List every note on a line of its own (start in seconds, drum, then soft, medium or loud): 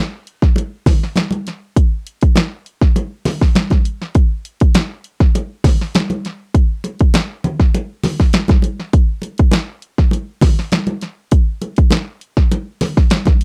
0.27 closed hi-hat medium
0.42 kick medium
0.42 snare soft
0.56 closed hi-hat medium
0.56 muted conga medium
0.86 kick loud
0.86 snare soft
0.86 open hi-hat medium
0.86 muted conga medium
0.86 low conga medium
1.03 snare soft
1.16 snare medium
1.16 closed hi-hat medium
1.16 high conga medium
1.31 closed hi-hat medium
1.31 high conga medium
1.47 snare soft
1.47 closed hi-hat medium
1.76 kick medium
1.76 closed hi-hat medium
2.07 closed hi-hat medium
2.21 kick medium
2.21 closed hi-hat medium
2.36 snare loud
2.36 closed hi-hat medium
2.36 high conga medium
2.66 closed hi-hat medium
2.81 kick medium
2.81 snare soft
2.96 closed hi-hat medium
2.96 muted conga medium
3.25 snare soft
3.25 open hi-hat medium
3.25 muted conga medium
3.25 low conga medium
3.41 kick medium
3.41 snare soft
3.55 snare loud
3.55 closed hi-hat medium
3.55 high conga medium
3.70 kick medium
3.70 snare soft
3.70 closed hi-hat medium
3.70 high conga medium
3.85 closed hi-hat medium
4.02 snare soft
4.15 kick loud
4.15 closed hi-hat medium
4.45 closed hi-hat medium
4.60 kick medium
4.60 closed hi-hat medium
4.75 snare loud
4.75 closed hi-hat medium
4.75 high conga medium
5.04 closed hi-hat medium
5.20 kick loud
5.20 snare soft
5.35 closed hi-hat loud
5.35 muted conga medium
5.64 kick medium
5.64 snare soft
5.64 open hi-hat medium
5.64 muted conga medium
5.64 low conga medium
5.81 snare soft
5.95 snare loud
5.95 closed hi-hat medium
5.95 high conga medium
6.10 closed hi-hat medium
6.10 high conga medium
6.25 snare soft
6.25 closed hi-hat medium
6.54 kick medium
6.54 closed hi-hat medium
6.84 closed hi-hat medium
6.84 muted conga soft
6.99 kick medium
6.99 closed hi-hat medium
7.14 snare loud
7.14 closed hi-hat medium
7.14 high conga medium
7.44 closed hi-hat medium
7.44 low conga medium
7.60 kick medium
7.60 snare soft
7.74 closed hi-hat medium
7.74 muted conga medium
8.04 snare soft
8.04 open hi-hat medium
8.04 muted conga medium
8.04 low conga medium
8.20 kick medium
8.20 snare soft
8.33 snare loud
8.33 closed hi-hat medium
8.33 high conga medium
8.48 kick loud
8.48 snare soft
8.48 closed hi-hat medium
8.48 high conga medium
8.62 closed hi-hat medium
8.62 high conga medium
8.80 snare soft
8.93 kick loud
8.93 closed hi-hat medium
9.22 closed hi-hat medium
9.22 muted conga soft
9.38 kick medium
9.38 closed hi-hat medium
9.52 snare loud
9.52 closed hi-hat medium
9.52 high conga medium
9.82 closed hi-hat medium
9.98 kick medium
9.98 snare soft
10.11 closed hi-hat medium
10.11 muted conga medium
10.41 kick loud
10.41 snare soft
10.41 open hi-hat medium
10.41 muted conga medium
10.41 low conga medium
10.59 snare soft
10.72 snare loud
10.72 closed hi-hat medium
10.72 high conga medium
10.87 closed hi-hat medium
10.87 high conga medium
11.01 snare soft
11.01 closed hi-hat medium
11.31 kick medium
11.31 closed hi-hat medium
11.62 closed hi-hat medium
11.62 muted conga soft
11.76 kick medium
11.76 closed hi-hat medium
11.91 snare loud
11.91 closed hi-hat medium
11.91 high conga medium
12.21 closed hi-hat medium
12.37 kick medium
12.37 snare soft
12.52 closed hi-hat medium
12.52 muted conga medium
12.81 snare soft
12.81 open hi-hat medium
12.81 muted conga medium
12.81 low conga medium
12.97 kick medium
12.97 snare soft
13.10 snare loud
13.10 closed hi-hat medium
13.10 high conga medium
13.25 kick loud
13.25 snare soft
13.25 closed hi-hat medium
13.25 high conga medium
13.41 closed hi-hat medium